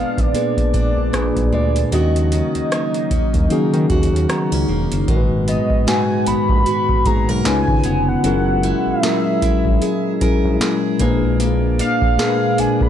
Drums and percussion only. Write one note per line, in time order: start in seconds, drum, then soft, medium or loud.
0.18 kick medium
0.18 closed hi-hat medium
0.35 closed hi-hat medium
0.58 kick medium
0.58 closed hi-hat soft
0.74 kick medium
0.74 closed hi-hat medium
1.14 cross-stick loud
1.14 closed hi-hat medium
1.36 kick medium
1.36 closed hi-hat soft
1.76 closed hi-hat medium
1.92 closed hi-hat medium
2.16 closed hi-hat soft
2.32 closed hi-hat medium
2.55 closed hi-hat soft
2.72 cross-stick loud
2.72 closed hi-hat medium
2.94 closed hi-hat soft
3.11 kick medium
3.11 closed hi-hat medium
3.34 kick loud
3.34 closed hi-hat medium
3.50 closed hi-hat medium
3.74 closed hi-hat soft
3.90 kick medium
3.90 closed hi-hat soft
4.03 closed hi-hat medium
4.16 closed hi-hat medium
4.30 cross-stick loud
4.30 closed hi-hat medium
4.52 closed hi-hat soft
4.92 closed hi-hat medium
5.08 kick loud
5.08 closed hi-hat medium
5.48 closed hi-hat medium
5.70 kick medium
5.88 snare loud
5.88 closed hi-hat medium
6.27 closed hi-hat medium
6.49 kick medium
6.66 closed hi-hat medium
6.89 kick medium
7.06 kick loud
7.06 closed hi-hat medium
7.45 snare loud
7.45 closed hi-hat medium
7.68 kick medium
7.84 closed hi-hat medium
8.24 closed hi-hat medium
8.63 closed hi-hat medium
9.03 snare loud
9.03 closed hi-hat medium
9.42 kick medium
9.42 closed hi-hat medium
9.65 kick medium
9.82 closed hi-hat medium
10.21 kick medium
10.21 closed hi-hat medium
10.61 snare loud
10.61 closed hi-hat medium
10.99 kick loud
10.99 closed hi-hat medium
11.40 closed hi-hat medium
11.79 closed hi-hat medium
12.02 kick medium
12.19 snare loud
12.19 closed hi-hat medium
12.58 closed hi-hat medium
12.81 kick loud